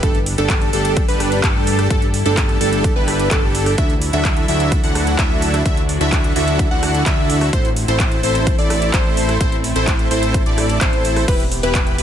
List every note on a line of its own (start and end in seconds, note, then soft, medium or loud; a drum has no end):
0.03 0.36 G1 loud
0.03 3.74 G3 medium
0.03 0.19 D4 medium
0.03 1.89 D4 medium
0.03 0.19 G4 medium
0.03 0.19 A4 loud
0.03 3.74 A4 medium
0.03 0.19 A4 loud
0.03 kick loud
0.03 closed hi-hat medium
0.15 closed hi-hat soft
0.26 open hi-hat loud
0.38 0.71 G1 medium
0.38 0.70 D4 medium
0.38 0.70 G4 medium
0.38 0.70 A4 medium
0.38 0.71 A4 medium
0.38 closed hi-hat medium
0.50 kick loud
0.50 clap loud
0.50 closed hi-hat medium
0.62 closed hi-hat soft
0.73 1.06 G1 loud
0.73 1.06 D4 medium
0.73 1.06 G4 medium
0.73 1.06 A4 medium
0.73 1.06 A4 loud
0.73 open hi-hat loud
0.85 closed hi-hat medium
0.97 kick loud
0.97 closed hi-hat medium
1.08 1.41 G1 loud
1.08 1.41 D4 medium
1.08 1.41 G4 medium
1.08 1.41 B4 medium
1.08 open hi-hat medium
1.20 cross-stick medium
1.20 open hi-hat loud
1.32 closed hi-hat medium
1.44 1.88 G1 loud
1.44 1.88 D4 medium
1.44 1.88 G4 medium
1.44 1.88 A4 medium
1.44 1.88 A4 loud
1.44 kick loud
1.44 clap loud
1.44 closed hi-hat medium
1.67 open hi-hat loud
1.79 cross-stick medium
1.79 closed hi-hat medium
1.90 2.23 G1 loud
1.90 2.06 D4 medium
1.90 5.62 E4 medium
1.90 2.06 G4 medium
1.90 2.06 A4 loud
1.90 kick loud
1.90 closed hi-hat medium
2.02 closed hi-hat soft
2.14 open hi-hat loud
2.26 2.59 G1 loud
2.26 2.58 D4 medium
2.26 2.58 G4 medium
2.26 2.58 A4 medium
2.26 closed hi-hat soft
2.37 kick loud
2.37 clap loud
2.37 closed hi-hat medium
2.49 closed hi-hat soft
2.61 2.94 G1 loud
2.61 2.93 D4 medium
2.61 2.93 G4 medium
2.61 2.93 A4 loud
2.61 2.93 A4 medium
2.61 open hi-hat loud
2.73 closed hi-hat medium
2.84 kick loud
2.84 closed hi-hat medium
2.96 3.29 G1 loud
2.96 3.28 D4 medium
2.96 3.28 G4 medium
2.96 3.28 B4 medium
3.08 cross-stick medium
3.08 open hi-hat loud
3.20 closed hi-hat soft
3.31 3.76 G1 loud
3.31 3.75 D4 medium
3.31 3.75 G4 medium
3.31 3.75 A4 medium
3.31 kick loud
3.31 clap loud
3.31 closed hi-hat medium
3.55 open hi-hat loud
3.66 cross-stick medium
3.66 open hi-hat medium
3.78 4.11 D2 loud
3.78 7.49 F#3 medium
3.78 7.49 D4 medium
3.78 3.94 D4 medium
3.78 3.94 E4 medium
3.78 3.94 F#4 medium
3.78 3.94 A4 medium
3.78 3.94 E5 loud
3.78 kick loud
3.78 closed hi-hat medium
3.90 closed hi-hat soft
4.02 open hi-hat loud
4.13 4.46 D2 loud
4.13 4.46 D4 medium
4.13 4.46 E4 medium
4.13 4.46 F#4 medium
4.13 4.46 A4 medium
4.13 4.46 E5 medium
4.13 closed hi-hat soft
4.25 kick loud
4.25 clap loud
4.25 closed hi-hat medium
4.37 closed hi-hat soft
4.48 4.81 D2 medium
4.48 4.81 D4 medium
4.48 4.81 E4 medium
4.48 4.81 F#4 medium
4.48 4.81 A4 medium
4.48 4.81 E5 loud
4.48 open hi-hat loud
4.60 closed hi-hat soft
4.72 kick loud
4.72 closed hi-hat medium
4.84 5.16 D2 medium
4.84 5.16 D4 medium
4.84 5.16 E4 medium
4.84 5.16 F#4 medium
4.84 5.16 A4 medium
4.84 5.16 F#5 medium
4.84 open hi-hat medium
4.95 cross-stick medium
4.95 open hi-hat loud
5.07 closed hi-hat soft
5.19 5.63 D2 loud
5.19 5.63 D4 medium
5.19 5.63 E4 medium
5.19 5.63 F#4 medium
5.19 5.63 A4 medium
5.19 5.63 E5 medium
5.19 kick loud
5.19 clap loud
5.19 closed hi-hat medium
5.42 open hi-hat loud
5.54 cross-stick medium
5.54 closed hi-hat medium
5.66 5.98 D2 loud
5.66 5.81 D4 medium
5.66 5.81 E4 medium
5.66 5.81 F#4 medium
5.66 7.51 F#4 medium
5.66 5.81 A4 medium
5.66 5.81 E5 loud
5.66 kick loud
5.66 closed hi-hat medium
5.77 closed hi-hat soft
5.89 open hi-hat loud
6.01 6.33 D2 medium
6.01 6.33 D4 medium
6.01 6.33 E4 medium
6.01 6.33 F#4 medium
6.01 6.33 A4 medium
6.01 6.33 E5 medium
6.01 closed hi-hat medium
6.12 kick loud
6.12 clap loud
6.12 closed hi-hat medium
6.24 closed hi-hat soft
6.36 6.69 D2 loud
6.36 6.68 D4 medium
6.36 6.68 E4 medium
6.36 6.68 F#4 medium
6.36 6.68 A4 medium
6.36 6.68 E5 medium
6.36 6.68 E5 loud
6.36 open hi-hat loud
6.48 closed hi-hat medium
6.59 kick loud
6.59 closed hi-hat medium
6.71 7.04 D2 loud
6.71 7.03 D4 medium
6.71 7.03 E4 medium
6.71 7.03 F#4 medium
6.71 7.03 A4 medium
6.71 7.03 F#5 medium
6.83 cross-stick medium
6.83 open hi-hat loud
6.95 closed hi-hat medium
7.06 7.51 D2 loud
7.06 7.50 D4 medium
7.06 7.50 E4 medium
7.06 7.50 F#4 medium
7.06 7.50 A4 medium
7.06 7.50 E5 loud
7.06 7.50 E5 medium
7.06 kick loud
7.06 clap loud
7.06 closed hi-hat medium
7.30 open hi-hat loud
7.41 cross-stick medium
7.41 open hi-hat medium
7.53 7.86 A1 loud
7.53 11.24 A3 medium
7.53 11.24 C4 medium
7.53 11.24 E4 medium
7.53 7.69 E4 medium
7.53 7.69 A4 medium
7.53 7.69 C5 loud
7.53 kick loud
7.53 closed hi-hat medium
7.65 closed hi-hat soft
7.76 open hi-hat loud
7.88 8.21 A1 medium
7.88 8.21 E4 medium
7.88 8.21 A4 medium
7.88 8.21 C5 medium
7.88 closed hi-hat medium
8.00 kick loud
8.00 clap loud
8.00 closed hi-hat medium
8.12 closed hi-hat soft
8.23 8.56 A1 medium
8.23 8.56 E4 medium
8.23 8.56 A4 medium
8.23 8.56 C5 medium
8.23 8.56 C5 loud
8.23 open hi-hat loud
8.35 closed hi-hat medium
8.47 kick loud
8.47 closed hi-hat medium
8.58 8.91 A1 loud
8.58 8.91 E4 medium
8.58 8.91 A4 medium
8.58 8.91 D5 medium
8.58 open hi-hat medium
8.70 cross-stick medium
8.70 open hi-hat loud
8.82 closed hi-hat medium
8.94 9.38 A1 loud
8.94 9.38 E4 medium
8.94 9.38 A4 medium
8.94 9.38 C5 medium
8.94 kick loud
8.94 clap loud
8.94 closed hi-hat medium
9.17 open hi-hat loud
9.29 cross-stick medium
9.29 closed hi-hat medium
9.41 9.73 A1 medium
9.41 9.56 E4 medium
9.41 9.56 A4 medium
9.41 9.56 C5 loud
9.41 kick loud
9.41 closed hi-hat medium
9.52 closed hi-hat soft
9.64 open hi-hat loud
9.76 10.09 A1 medium
9.76 10.08 E4 medium
9.76 10.08 A4 medium
9.76 10.08 C5 medium
9.76 closed hi-hat medium
9.87 kick loud
9.87 clap loud
9.87 closed hi-hat medium
9.99 closed hi-hat soft
10.11 10.44 A1 loud
10.11 10.43 E4 medium
10.11 10.43 A4 medium
10.11 10.43 C5 medium
10.11 10.43 C5 loud
10.11 open hi-hat loud
10.23 closed hi-hat medium
10.34 kick loud
10.34 closed hi-hat medium
10.46 10.79 A1 loud
10.46 10.78 E4 medium
10.46 10.78 A4 medium
10.46 10.78 D5 medium
10.46 closed hi-hat soft
10.58 cross-stick medium
10.58 open hi-hat loud
10.70 closed hi-hat medium
10.81 11.26 A1 loud
10.81 11.25 E4 medium
10.81 11.25 A4 medium
10.81 11.25 C5 loud
10.81 11.25 C5 medium
10.81 kick loud
10.81 clap loud
10.81 closed hi-hat medium
10.93 closed hi-hat soft
11.05 open hi-hat loud
11.16 cross-stick medium
11.16 open hi-hat medium
11.28 11.61 E1 loud
11.28 12.03 E3 medium
11.28 12.03 B3 medium
11.28 11.44 E4 medium
11.28 11.44 G4 medium
11.28 12.03 G4 medium
11.28 11.44 B4 loud
11.28 kick loud
11.28 closed hi-hat medium
11.28 crash medium
11.40 closed hi-hat soft
11.52 open hi-hat loud
11.63 11.96 E1 medium
11.63 11.96 E4 medium
11.63 11.96 G4 medium
11.63 11.96 B4 medium
11.63 closed hi-hat medium
11.75 kick loud
11.75 clap loud
11.75 closed hi-hat medium
11.87 closed hi-hat soft
11.98 12.03 E1 loud
11.98 12.03 E4 medium
11.98 12.03 G4 medium
11.98 12.03 B4 loud
11.98 open hi-hat loud